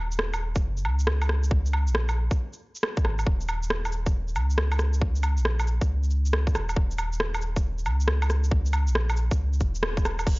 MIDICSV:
0, 0, Header, 1, 3, 480
1, 0, Start_track
1, 0, Tempo, 437956
1, 1653, Time_signature, 4, 2, 24, 8
1, 11390, End_track
2, 0, Start_track
2, 0, Title_t, "Sub bass"
2, 0, Program_c, 0, 38
2, 0, Note_on_c, 0, 27, 96
2, 681, Note_off_c, 0, 27, 0
2, 691, Note_on_c, 0, 30, 83
2, 930, Note_on_c, 0, 37, 92
2, 946, Note_off_c, 0, 30, 0
2, 2047, Note_on_c, 0, 34, 100
2, 2063, Note_off_c, 0, 37, 0
2, 2508, Note_off_c, 0, 34, 0
2, 3332, Note_on_c, 0, 32, 105
2, 3559, Note_off_c, 0, 32, 0
2, 3580, Note_on_c, 0, 27, 104
2, 4526, Note_off_c, 0, 27, 0
2, 4532, Note_on_c, 0, 27, 83
2, 4764, Note_on_c, 0, 37, 92
2, 4781, Note_off_c, 0, 27, 0
2, 5887, Note_on_c, 0, 34, 101
2, 5904, Note_off_c, 0, 37, 0
2, 6349, Note_off_c, 0, 34, 0
2, 6452, Note_on_c, 0, 37, 89
2, 7166, Note_on_c, 0, 27, 111
2, 7183, Note_off_c, 0, 37, 0
2, 7396, Note_off_c, 0, 27, 0
2, 7412, Note_on_c, 0, 27, 99
2, 8360, Note_off_c, 0, 27, 0
2, 8366, Note_on_c, 0, 27, 83
2, 8608, Note_on_c, 0, 37, 96
2, 8624, Note_off_c, 0, 27, 0
2, 9725, Note_on_c, 0, 34, 106
2, 9742, Note_off_c, 0, 37, 0
2, 10188, Note_off_c, 0, 34, 0
2, 10286, Note_on_c, 0, 37, 89
2, 10532, Note_on_c, 0, 27, 97
2, 10549, Note_off_c, 0, 37, 0
2, 10759, Note_off_c, 0, 27, 0
2, 10765, Note_on_c, 0, 27, 91
2, 11238, Note_off_c, 0, 27, 0
2, 11250, Note_on_c, 0, 27, 102
2, 11390, Note_off_c, 0, 27, 0
2, 11390, End_track
3, 0, Start_track
3, 0, Title_t, "Drums"
3, 129, Note_on_c, 9, 82, 58
3, 207, Note_on_c, 9, 37, 104
3, 239, Note_off_c, 9, 82, 0
3, 317, Note_off_c, 9, 37, 0
3, 368, Note_on_c, 9, 77, 66
3, 368, Note_on_c, 9, 82, 46
3, 478, Note_off_c, 9, 77, 0
3, 478, Note_off_c, 9, 82, 0
3, 609, Note_on_c, 9, 82, 59
3, 611, Note_on_c, 9, 36, 108
3, 718, Note_off_c, 9, 82, 0
3, 721, Note_off_c, 9, 36, 0
3, 847, Note_on_c, 9, 82, 32
3, 932, Note_on_c, 9, 77, 60
3, 956, Note_off_c, 9, 82, 0
3, 1041, Note_off_c, 9, 77, 0
3, 1090, Note_on_c, 9, 82, 57
3, 1173, Note_on_c, 9, 37, 110
3, 1200, Note_off_c, 9, 82, 0
3, 1283, Note_off_c, 9, 37, 0
3, 1333, Note_on_c, 9, 77, 67
3, 1333, Note_on_c, 9, 82, 33
3, 1417, Note_on_c, 9, 37, 69
3, 1442, Note_off_c, 9, 77, 0
3, 1442, Note_off_c, 9, 82, 0
3, 1527, Note_off_c, 9, 37, 0
3, 1573, Note_on_c, 9, 82, 58
3, 1655, Note_on_c, 9, 36, 127
3, 1683, Note_off_c, 9, 82, 0
3, 1765, Note_off_c, 9, 36, 0
3, 1817, Note_on_c, 9, 82, 44
3, 1899, Note_on_c, 9, 77, 68
3, 1926, Note_off_c, 9, 82, 0
3, 2009, Note_off_c, 9, 77, 0
3, 2054, Note_on_c, 9, 82, 55
3, 2133, Note_on_c, 9, 37, 112
3, 2164, Note_off_c, 9, 82, 0
3, 2243, Note_off_c, 9, 37, 0
3, 2288, Note_on_c, 9, 77, 64
3, 2288, Note_on_c, 9, 82, 44
3, 2398, Note_off_c, 9, 77, 0
3, 2398, Note_off_c, 9, 82, 0
3, 2532, Note_on_c, 9, 36, 114
3, 2534, Note_on_c, 9, 82, 58
3, 2642, Note_off_c, 9, 36, 0
3, 2644, Note_off_c, 9, 82, 0
3, 2777, Note_on_c, 9, 82, 30
3, 2887, Note_off_c, 9, 82, 0
3, 3019, Note_on_c, 9, 82, 58
3, 3102, Note_on_c, 9, 37, 107
3, 3128, Note_off_c, 9, 82, 0
3, 3211, Note_off_c, 9, 37, 0
3, 3255, Note_on_c, 9, 36, 116
3, 3256, Note_on_c, 9, 82, 32
3, 3338, Note_on_c, 9, 37, 65
3, 3338, Note_on_c, 9, 77, 51
3, 3365, Note_off_c, 9, 36, 0
3, 3366, Note_off_c, 9, 82, 0
3, 3448, Note_off_c, 9, 37, 0
3, 3448, Note_off_c, 9, 77, 0
3, 3494, Note_on_c, 9, 77, 49
3, 3494, Note_on_c, 9, 82, 52
3, 3578, Note_on_c, 9, 36, 119
3, 3604, Note_off_c, 9, 77, 0
3, 3604, Note_off_c, 9, 82, 0
3, 3688, Note_off_c, 9, 36, 0
3, 3733, Note_on_c, 9, 69, 41
3, 3733, Note_on_c, 9, 82, 43
3, 3821, Note_off_c, 9, 69, 0
3, 3821, Note_on_c, 9, 69, 77
3, 3821, Note_on_c, 9, 77, 67
3, 3843, Note_off_c, 9, 82, 0
3, 3930, Note_off_c, 9, 69, 0
3, 3930, Note_off_c, 9, 77, 0
3, 3977, Note_on_c, 9, 82, 54
3, 4058, Note_on_c, 9, 37, 106
3, 4087, Note_off_c, 9, 82, 0
3, 4168, Note_off_c, 9, 37, 0
3, 4221, Note_on_c, 9, 77, 62
3, 4221, Note_on_c, 9, 82, 42
3, 4299, Note_on_c, 9, 69, 73
3, 4331, Note_off_c, 9, 77, 0
3, 4331, Note_off_c, 9, 82, 0
3, 4408, Note_off_c, 9, 69, 0
3, 4454, Note_on_c, 9, 36, 103
3, 4454, Note_on_c, 9, 82, 55
3, 4563, Note_off_c, 9, 36, 0
3, 4564, Note_off_c, 9, 82, 0
3, 4691, Note_on_c, 9, 82, 30
3, 4777, Note_on_c, 9, 69, 74
3, 4777, Note_on_c, 9, 77, 61
3, 4801, Note_off_c, 9, 82, 0
3, 4886, Note_off_c, 9, 69, 0
3, 4886, Note_off_c, 9, 77, 0
3, 4935, Note_on_c, 9, 82, 53
3, 5017, Note_on_c, 9, 37, 107
3, 5045, Note_off_c, 9, 82, 0
3, 5127, Note_off_c, 9, 37, 0
3, 5169, Note_on_c, 9, 77, 67
3, 5169, Note_on_c, 9, 82, 32
3, 5251, Note_on_c, 9, 37, 64
3, 5251, Note_on_c, 9, 69, 75
3, 5279, Note_off_c, 9, 77, 0
3, 5279, Note_off_c, 9, 82, 0
3, 5361, Note_off_c, 9, 37, 0
3, 5361, Note_off_c, 9, 69, 0
3, 5409, Note_on_c, 9, 82, 53
3, 5496, Note_on_c, 9, 36, 117
3, 5519, Note_off_c, 9, 82, 0
3, 5606, Note_off_c, 9, 36, 0
3, 5650, Note_on_c, 9, 69, 43
3, 5650, Note_on_c, 9, 82, 41
3, 5734, Note_off_c, 9, 69, 0
3, 5734, Note_on_c, 9, 69, 81
3, 5734, Note_on_c, 9, 77, 70
3, 5760, Note_off_c, 9, 82, 0
3, 5843, Note_off_c, 9, 69, 0
3, 5843, Note_off_c, 9, 77, 0
3, 5889, Note_on_c, 9, 82, 54
3, 5974, Note_on_c, 9, 37, 97
3, 5999, Note_off_c, 9, 82, 0
3, 6084, Note_off_c, 9, 37, 0
3, 6133, Note_on_c, 9, 77, 65
3, 6133, Note_on_c, 9, 82, 45
3, 6220, Note_on_c, 9, 69, 77
3, 6242, Note_off_c, 9, 77, 0
3, 6242, Note_off_c, 9, 82, 0
3, 6330, Note_off_c, 9, 69, 0
3, 6373, Note_on_c, 9, 36, 99
3, 6377, Note_on_c, 9, 82, 53
3, 6483, Note_off_c, 9, 36, 0
3, 6486, Note_off_c, 9, 82, 0
3, 6616, Note_on_c, 9, 82, 30
3, 6696, Note_on_c, 9, 69, 78
3, 6726, Note_off_c, 9, 82, 0
3, 6806, Note_off_c, 9, 69, 0
3, 6859, Note_on_c, 9, 69, 45
3, 6859, Note_on_c, 9, 82, 54
3, 6941, Note_on_c, 9, 37, 103
3, 6969, Note_off_c, 9, 69, 0
3, 6969, Note_off_c, 9, 82, 0
3, 7050, Note_off_c, 9, 37, 0
3, 7092, Note_on_c, 9, 36, 104
3, 7100, Note_on_c, 9, 82, 30
3, 7180, Note_on_c, 9, 37, 63
3, 7180, Note_on_c, 9, 69, 78
3, 7180, Note_on_c, 9, 77, 55
3, 7202, Note_off_c, 9, 36, 0
3, 7210, Note_off_c, 9, 82, 0
3, 7290, Note_off_c, 9, 37, 0
3, 7290, Note_off_c, 9, 69, 0
3, 7290, Note_off_c, 9, 77, 0
3, 7336, Note_on_c, 9, 77, 52
3, 7336, Note_on_c, 9, 82, 52
3, 7415, Note_on_c, 9, 36, 109
3, 7446, Note_off_c, 9, 77, 0
3, 7446, Note_off_c, 9, 82, 0
3, 7525, Note_off_c, 9, 36, 0
3, 7577, Note_on_c, 9, 69, 45
3, 7577, Note_on_c, 9, 82, 41
3, 7656, Note_off_c, 9, 69, 0
3, 7656, Note_on_c, 9, 69, 81
3, 7656, Note_on_c, 9, 77, 70
3, 7687, Note_off_c, 9, 82, 0
3, 7766, Note_off_c, 9, 69, 0
3, 7766, Note_off_c, 9, 77, 0
3, 7813, Note_on_c, 9, 82, 55
3, 7893, Note_on_c, 9, 37, 98
3, 7923, Note_off_c, 9, 82, 0
3, 8002, Note_off_c, 9, 37, 0
3, 8051, Note_on_c, 9, 77, 68
3, 8051, Note_on_c, 9, 82, 44
3, 8131, Note_on_c, 9, 69, 78
3, 8161, Note_off_c, 9, 77, 0
3, 8161, Note_off_c, 9, 82, 0
3, 8241, Note_off_c, 9, 69, 0
3, 8291, Note_on_c, 9, 36, 102
3, 8292, Note_on_c, 9, 82, 56
3, 8401, Note_off_c, 9, 36, 0
3, 8402, Note_off_c, 9, 82, 0
3, 8532, Note_on_c, 9, 82, 30
3, 8614, Note_on_c, 9, 69, 75
3, 8614, Note_on_c, 9, 77, 63
3, 8642, Note_off_c, 9, 82, 0
3, 8724, Note_off_c, 9, 69, 0
3, 8724, Note_off_c, 9, 77, 0
3, 8774, Note_on_c, 9, 82, 55
3, 8852, Note_on_c, 9, 37, 103
3, 8884, Note_off_c, 9, 82, 0
3, 8962, Note_off_c, 9, 37, 0
3, 9011, Note_on_c, 9, 77, 71
3, 9011, Note_on_c, 9, 82, 32
3, 9096, Note_on_c, 9, 37, 58
3, 9096, Note_on_c, 9, 69, 83
3, 9120, Note_off_c, 9, 77, 0
3, 9120, Note_off_c, 9, 82, 0
3, 9205, Note_off_c, 9, 37, 0
3, 9205, Note_off_c, 9, 69, 0
3, 9250, Note_on_c, 9, 82, 55
3, 9332, Note_on_c, 9, 36, 120
3, 9359, Note_off_c, 9, 82, 0
3, 9442, Note_off_c, 9, 36, 0
3, 9490, Note_on_c, 9, 69, 44
3, 9490, Note_on_c, 9, 82, 44
3, 9570, Note_off_c, 9, 69, 0
3, 9570, Note_on_c, 9, 69, 82
3, 9570, Note_on_c, 9, 77, 72
3, 9599, Note_off_c, 9, 82, 0
3, 9679, Note_off_c, 9, 69, 0
3, 9679, Note_off_c, 9, 77, 0
3, 9728, Note_on_c, 9, 82, 60
3, 9812, Note_on_c, 9, 37, 101
3, 9837, Note_off_c, 9, 82, 0
3, 9921, Note_off_c, 9, 37, 0
3, 9970, Note_on_c, 9, 77, 70
3, 9970, Note_on_c, 9, 82, 46
3, 10049, Note_on_c, 9, 69, 79
3, 10079, Note_off_c, 9, 77, 0
3, 10079, Note_off_c, 9, 82, 0
3, 10159, Note_off_c, 9, 69, 0
3, 10209, Note_on_c, 9, 36, 104
3, 10211, Note_on_c, 9, 82, 59
3, 10318, Note_off_c, 9, 36, 0
3, 10321, Note_off_c, 9, 82, 0
3, 10449, Note_on_c, 9, 82, 31
3, 10528, Note_on_c, 9, 69, 79
3, 10530, Note_on_c, 9, 36, 61
3, 10559, Note_off_c, 9, 82, 0
3, 10638, Note_off_c, 9, 69, 0
3, 10640, Note_off_c, 9, 36, 0
3, 10687, Note_on_c, 9, 69, 45
3, 10687, Note_on_c, 9, 82, 58
3, 10771, Note_on_c, 9, 37, 102
3, 10797, Note_off_c, 9, 69, 0
3, 10797, Note_off_c, 9, 82, 0
3, 10880, Note_off_c, 9, 37, 0
3, 10928, Note_on_c, 9, 36, 105
3, 10932, Note_on_c, 9, 82, 34
3, 11016, Note_on_c, 9, 37, 59
3, 11016, Note_on_c, 9, 69, 80
3, 11016, Note_on_c, 9, 77, 57
3, 11038, Note_off_c, 9, 36, 0
3, 11042, Note_off_c, 9, 82, 0
3, 11126, Note_off_c, 9, 37, 0
3, 11126, Note_off_c, 9, 69, 0
3, 11126, Note_off_c, 9, 77, 0
3, 11168, Note_on_c, 9, 77, 54
3, 11168, Note_on_c, 9, 82, 53
3, 11251, Note_on_c, 9, 36, 120
3, 11258, Note_on_c, 9, 49, 99
3, 11277, Note_off_c, 9, 77, 0
3, 11277, Note_off_c, 9, 82, 0
3, 11360, Note_off_c, 9, 36, 0
3, 11367, Note_off_c, 9, 49, 0
3, 11390, End_track
0, 0, End_of_file